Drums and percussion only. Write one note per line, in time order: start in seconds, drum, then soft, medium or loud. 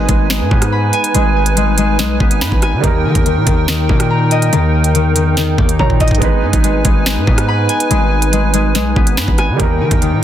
0.09 kick medium
0.09 closed hi-hat medium
0.30 finger snap loud
0.30 snare loud
0.51 kick loud
0.62 cross-stick loud
0.62 closed hi-hat medium
0.93 closed hi-hat medium
1.04 closed hi-hat medium
1.15 closed hi-hat medium
1.46 closed hi-hat medium
1.57 closed hi-hat medium
1.78 closed hi-hat medium
1.99 snare medium
1.99 closed hi-hat medium
2.20 kick loud
2.31 closed hi-hat medium
2.41 finger snap medium
2.41 snare loud
2.52 kick medium
2.62 cross-stick medium
2.62 closed hi-hat medium
2.84 kick loud
2.84 closed hi-hat medium
3.15 kick medium
3.15 closed hi-hat medium
3.26 closed hi-hat medium
3.47 kick loud
3.47 closed hi-hat medium
3.68 finger snap loud
3.68 snare loud
3.89 kick loud
4.00 cross-stick loud
4.00 closed hi-hat medium
4.31 closed hi-hat medium
4.42 closed hi-hat medium
4.53 closed hi-hat medium
4.84 closed hi-hat medium
4.95 closed hi-hat medium
5.16 closed hi-hat medium
5.37 snare medium
5.37 closed hi-hat medium
5.58 kick loud
5.69 closed hi-hat medium
5.79 kick medium
5.90 kick medium
6.00 kick loud
6.00 closed hi-hat soft
6.00 open hi-hat medium
6.08 kick loud
6.08 closed hi-hat medium
6.15 closed hi-hat medium
6.22 kick loud
6.22 closed hi-hat medium
6.53 kick medium
6.53 closed hi-hat medium
6.64 closed hi-hat medium
6.85 kick loud
6.85 closed hi-hat medium
7.06 finger snap loud
7.06 snare loud
7.27 kick loud
7.38 cross-stick loud
7.38 closed hi-hat medium
7.69 closed hi-hat medium
7.80 closed hi-hat medium
7.91 closed hi-hat medium
8.22 closed hi-hat medium
8.33 closed hi-hat medium
8.54 closed hi-hat medium
8.75 snare medium
8.75 closed hi-hat medium
8.96 kick loud
9.07 closed hi-hat medium
9.17 finger snap medium
9.17 snare loud
9.28 kick medium
9.38 cross-stick medium
9.38 closed hi-hat medium
9.60 kick loud
9.60 closed hi-hat medium
9.91 kick loud
9.91 closed hi-hat medium
10.02 closed hi-hat medium